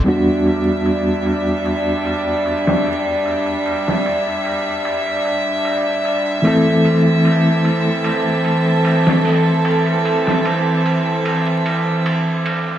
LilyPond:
<<
  \new Staff \with { instrumentName = "String section" } { \time 4/4 \key e \minor \tempo 4 = 75 << { e''1~ | e''1~ | e''1~ | e''1 | } \\ { <g d'>1~ | <g d'>1 | <e c' a'>1~ | <e c' a'>1 | } >> }
  \new Staff \with { instrumentName = "Reed electric piano" } { \time 4/4 \key e \minor <e, g b d' fis'>1~ | <e, g b d' fis'>1 | <e a c' e' a'>1~ | <e a c' e' a'>1 | }
  \new DrumStaff \with { instrumentName = "Drums" } \drummode { \time 4/4 cymr8 cymr8 cymr8 cymr8 cymr8 cymr8 cymr16 sn16 hho8 | cymr16 cymr16 cymr16 sn16 cymr8 cymr8 cymr16 cymr16 cymr8 cymr8 cymr8 | cymr8 cymr8 cymr8 cymr8 cymr8 cymr8 cymr16 sn16 hho8 | cymr16 cymr16 cymr16 sn16 cymr8 cymr8 cymr16 cymr16 cymr8 cymr8 cymr8 | }
>>